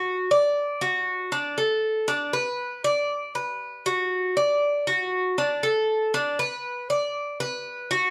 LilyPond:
\new Staff \with { instrumentName = "Cuban tres" } { \time 4/4 \key d \mixolydian \tempo 4 = 118 fis'8 d''4 fis'4 d'8 a'4 | d'8 b'4 d''4 b'4 fis'8~ | fis'8 d''4 fis'4 d'8 a'4 | d'8 b'4 d''4 b'4 fis'8 | }